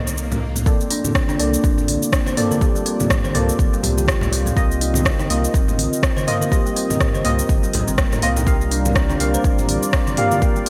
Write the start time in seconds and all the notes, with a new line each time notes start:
Already playing: C2 C4 D#4 A4 D#5, swell
0.07 high conga, cabasa
0.18 cabasa
0.32 muted conga, low conga, cabasa
0.56 low conga, cabasa
0.66 A#3 C4 F4 A4 D5, kick, muted conga, cabasa
0.81 cabasa
0.91 D4, open hi-hat
1.04 muted conga, high conga, low conga, cabasa
1.15 C4, kick, cross-stick, cabasa
1.28 D4, high conga, cabasa
1.39 C2 A#3 A4 D5, open hi-hat, muted conga
1.54 cabasa
1.64 G1 C4, kick, cabasa
1.78 muted conga, low conga, cabasa
1.88 A#1, open hi-hat, high conga
2.03 cabasa
2.12 C4, kick, cross-stick, cabasa
2.26 C5, muted conga, high conga, cabasa
2.37 A#3 C4 A4 D5, mid tom, open hi-hat
2.51 A#4, high conga, cabasa
2.61 A#3 G4 A4 D5, kick, muted conga, cabasa
2.75 G3, cabasa
2.86 C4, open hi-hat
3.00 muted conga, high conga, low conga, cabasa
3.10 kick, cross-stick, mid tom, cabasa
3.24 C5, high conga, cabasa
3.35 C2 A#3 C4 A4 D5, mid tom, open hi-hat, muted conga
3.49 cabasa
3.59 G1, kick, high conga, cabasa
3.73 G3, muted conga, cabasa
3.83 C2 G4, open hi-hat, low conga
3.98 G4, high conga, cabasa
4.08 kick, cross-stick, cabasa
4.21 C2, muted conga, low conga, cabasa
4.32 C4, open hi-hat
4.46 C4, low conga, cabasa
4.56 C2 A#3 C4 F4 A#4 D#5, kick, muted conga, cabasa
4.71 cabasa
4.81 D#4, open hi-hat
4.94 muted conga, high conga, low conga, cabasa
5.05 C4, kick, cross-stick, cabasa
5.19 D#4, high conga, cabasa
5.30 C2 A#3 F4 D#5, open hi-hat, muted conga
5.44 cabasa
5.54 G1 C4, kick, cabasa
5.68 muted conga, low conga, cabasa
5.79 A#1, open hi-hat, high conga
5.93 cabasa
6.03 C4, kick, cross-stick, cabasa
6.17 C5, muted conga, high conga, cabasa
6.27 A#3 C4 F4 D#5, mid tom, open hi-hat
6.41 A#4, high conga, cabasa
6.52 A#3 F4 G4 D#5, kick, muted conga, cabasa
6.66 G3, cabasa
6.76 C4, open hi-hat
6.90 muted conga, high conga, low conga, cabasa
7.00 kick, cross-stick, mid tom, cabasa
7.14 C5, high conga, cabasa
7.25 C2 A#3 C4 F4 D#5, mid tom, open hi-hat, muted conga
7.39 cabasa
7.49 G1, kick, high conga, cabasa
7.63 G3, muted conga, cabasa
7.73 A#1 A#4, open hi-hat, low conga
7.88 G1 C4, high conga, cabasa
7.98 A#3, kick, cross-stick, cabasa
8.12 muted conga, low conga, cabasa
8.22 C2 A#3 C4 F4 D#5, open hi-hat
8.36 D#4, low conga, cabasa
8.47 G3 A#3 C4 F4 G4 D5 F5, kick, muted conga, cabasa
8.61 cabasa
8.71 D4, open hi-hat
8.86 muted conga, high conga, low conga, cabasa
8.95 C4, kick, cross-stick, cabasa
9.10 D4, high conga, cabasa
9.20 C2 A#3 G4 F5, open hi-hat, muted conga
9.34 C5, cabasa
9.44 G1 C4, kick, cabasa
9.58 muted conga, low conga, cabasa
9.69 A#1, open hi-hat, high conga
9.83 cabasa
9.93 C4, kick, cross-stick, cabasa
10.07 muted conga, high conga, cabasa
10.17 A#3 C4 G4 F5, mid tom, open hi-hat
10.31 A#4, high conga, cabasa
10.42 A#3 G4 F5, kick, muted conga, cabasa
10.56 G3, cabasa